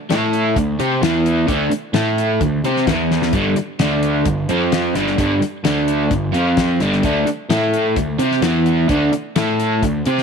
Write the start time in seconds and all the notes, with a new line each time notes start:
0.09 A2 A3 E4 A4, snare, closed hi-hat
0.33 closed hi-hat
0.56 D2 D3 A3, kick, closed hi-hat
0.79 C3 C4 G4 C5, closed hi-hat
1.01 E2 E3 B3 E4, snare, closed hi-hat
1.26 closed hi-hat
1.47 D2 D3 A3 D4, kick, closed hi-hat
1.71 muted picked electric bass stroke, muted overdriven electric guitar stroke, closed hi-hat
1.93 A2 A3 E4 A4, snare, closed hi-hat
2.18 closed hi-hat
2.41 D2 D3 A3, kick, closed hi-hat
2.64 C3 C4 G4 C5, closed hi-hat
2.77 snare
2.87 E2 E3 B3 E4, kick, snare, closed hi-hat
3.11 snare
3.22 snare
3.33 G1 G2 D3 G3, kick, closed hi-hat
3.56 muted picked electric bass stroke, muted overdriven electric guitar stroke, closed hi-hat
3.79 D2 D3 A3 D4, snare, closed hi-hat
4.03 closed hi-hat
4.25 G1 G2 D3, kick, closed hi-hat
4.49 F2 F3 C4 F4, closed hi-hat
4.72 snare, closed hi-hat
4.95 G1 G2 D3 G3, snare, closed hi-hat
5.07 snare
5.18 G1 G2 D3 G3, kick, closed hi-hat
5.41 muted picked electric bass stroke, muted overdriven electric guitar stroke, closed hi-hat
5.64 D2 D3 A3 D4, snare, closed hi-hat
5.88 closed hi-hat
6.11 G1 G2 D3, kick, closed hi-hat
6.33 F2 F3 C4 F4, closed hi-hat
6.57 kick, snare, closed hi-hat
6.80 G1 G2 D3 G3, snare, closed hi-hat
6.93 snare
7.03 D2 D3 A3 D4, kick, closed hi-hat
7.26 muted picked electric bass stroke, muted overdriven electric guitar stroke, closed hi-hat
7.49 A2 A3 E4 A4, snare, closed hi-hat
7.74 closed hi-hat
7.96 D2 D3 A3, kick, closed hi-hat
8.19 C3 C4 G4 C5, closed hi-hat
8.32 snare
8.41 E2 E3 B3 E4, snare, closed hi-hat
8.66 closed hi-hat
8.88 D2 D3 A3 D4, kick, closed hi-hat
9.12 muted picked electric bass stroke, muted overdriven electric guitar stroke, closed hi-hat
9.36 A2 A3 E4 A4, snare, closed hi-hat
9.60 closed hi-hat
9.82 D2 D3 A3, kick, closed hi-hat
10.05 C3 C4 G4 C5, closed hi-hat
10.18 snare